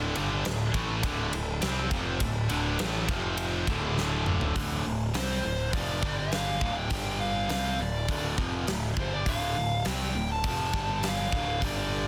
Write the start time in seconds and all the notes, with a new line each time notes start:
Already playing: D1 D2 A2 D3 D4 A4 E5
0.16 G1 G2 D3 G3, ride
0.45 D1 D2 A2, snare, ride
0.74 A1 A2 E3 A3, kick, ride
1.03 D1 D2 A2 D3, kick, ride
1.32 D1 D2 A2, ride
1.61 C2 C3 G3 C4, snare, ride
1.91 F1 F2 C3 F3, kick, ride
2.20 D1 D2 A2, kick, ride
2.49 D1 D2 A2 D3, ride
2.79 A1 A2 E3 A3, snare, ride
3.08 F1 F2 C3 F3 F4 C5 G5, kick, ride
3.38 ride
3.67 D1 D2 A2 D3 D4 A4 E5, kick, ride
3.98 snare
4.26 mid tom
4.41 floor tom
4.55 D1 D2 A2 D3, kick, open hi-hat
4.85 D1 D2 A2
5.14 C2 C3 G3 C4 C5, snare, open hi-hat
5.44 D1 D2 A2
5.73 F1 F2 C3 F3 D5, kick, open hi-hat
6.02 G1 G2 D3 G3, kick
6.19 F5
6.32 snare, open hi-hat
6.61 D1 D2 A2 D3, kick
6.78 G5
6.90 G1 G2 D3 G3, kick, open hi-hat
7.21 F5
7.49 C2 C3 G3 C4, snare, open hi-hat
7.79 D1 D2 A2 D5
8.08 D1 D2 A2 D3, kick, open hi-hat
8.38 F1 F2 C3 F3, kick
8.67 D1 D2 A2, snare, open hi-hat
8.96 G1 G2 D3 G3 C5, kick
9.14 D5
9.26 D1 D2 A2 D3 F5, kick, open hi-hat
9.56 D1 D2 A2
9.85 C2 C3 G3 C4 G5, snare, open hi-hat
10.14 D1 D2 A2
10.32 A5
10.44 F1 F2 C3 F3, kick, open hi-hat
10.73 G1 G2 D3 G3, kick
11.03 snare, open hi-hat
11.08 F5
11.32 D1 D2 A2 D3, kick
11.62 G1 G2 D3 G3 D5, kick, open hi-hat